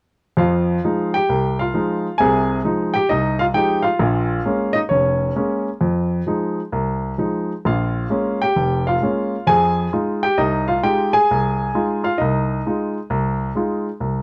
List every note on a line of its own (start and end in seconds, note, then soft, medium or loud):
0.37 0.77 F2 medium
0.37 0.77 F3 medium
0.37 1.11 F4 medium
0.37 1.11 F5 medium
0.84 1.16 F3 soft
0.84 1.16 G#3 soft
0.84 1.17 D#4 medium
1.14 1.57 G4 medium
1.14 1.61 G5 medium
1.29 1.69 C2 medium
1.59 2.16 F4 medium
1.59 2.15 F5 medium
1.74 2.06 F3 soft
1.74 2.06 G#3 soft
1.74 2.06 D#4 soft
2.18 2.59 C2 medium
2.18 2.59 C3 medium
2.18 2.62 G#4 medium
2.18 2.60 G#5 medium
2.65 2.96 F3 medium
2.65 2.96 G#3 soft
2.65 2.96 D#4 medium
2.94 3.09 G4 medium
2.94 3.09 G5 medium
3.09 3.49 C2 medium
3.09 3.38 D#4 medium
3.09 3.40 D#5 medium
3.39 3.46 F4 medium
3.39 3.44 F5 medium
3.54 3.86 F3 soft
3.54 3.86 G#3 soft
3.54 3.87 D#4 medium
3.54 3.83 G4 medium
3.54 3.82 G5 medium
3.82 4.71 F4 medium
3.82 4.77 F5 medium
3.99 4.39 A#1 medium
3.99 4.39 A#2 medium
4.46 4.77 G#3 soft
4.46 4.77 A#3 soft
4.46 4.77 C#4 medium
4.73 4.80 D#4 medium
4.73 4.78 D#5 medium
4.89 5.30 F1 medium
4.89 5.35 C#4 medium
4.89 5.61 C#5 medium
5.36 5.68 G#3 soft
5.36 5.68 A#3 soft
5.36 5.68 C#4 medium
5.81 6.20 F2 medium
6.27 6.59 F3 soft
6.27 6.60 G#3 soft
6.27 6.59 D#4 soft
6.72 7.13 C2 medium
7.18 7.51 F3 soft
7.18 7.51 G#3 soft
7.18 7.51 D#4 soft
7.65 8.05 A#1 medium
7.65 8.39 F4 medium
7.65 8.45 F5 medium
8.10 8.43 G#3 soft
8.10 8.43 A#3 soft
8.10 8.43 C#4 medium
8.42 8.85 G4 medium
8.42 8.89 G5 medium
8.56 8.96 F1 medium
8.87 9.45 F4 medium
8.87 9.50 F5 medium
9.02 9.34 G#3 soft
9.02 9.35 A#3 soft
9.02 9.35 C#4 medium
9.47 9.87 F2 medium
9.47 9.86 F3 medium
9.47 9.90 G#4 medium
9.47 9.89 G#5 medium
9.93 10.25 G#3 soft
9.93 10.25 D#4 soft
9.93 10.25 F4 medium
10.23 10.37 G4 medium
10.23 10.38 G5 medium
10.38 10.77 C2 medium
10.38 10.66 D#4 medium
10.38 10.66 D#5 medium
10.68 10.82 F4 medium
10.68 10.83 F5 medium
10.83 11.15 G#3 soft
10.83 11.15 D#4 soft
10.83 11.15 F4 medium
10.83 11.11 G4 medium
10.83 11.11 G5 medium
11.13 12.00 G#4 medium
11.13 12.06 G#5 medium
11.31 11.69 C2 medium
11.75 12.06 G#3 soft
11.75 12.06 D#4 soft
11.75 12.02 F4 medium
12.04 12.18 F4 medium
12.04 12.19 F5 medium
12.18 12.59 C2 medium
12.18 12.65 D#4 soft
12.18 12.90 D#5 medium
12.66 12.97 G#3 soft
12.66 12.97 D#4 soft
12.66 12.97 F4 soft
13.10 13.49 C2 medium
13.55 13.88 G#3 medium
13.55 13.88 D#4 soft
13.55 13.88 F4 soft
14.00 14.22 C2 medium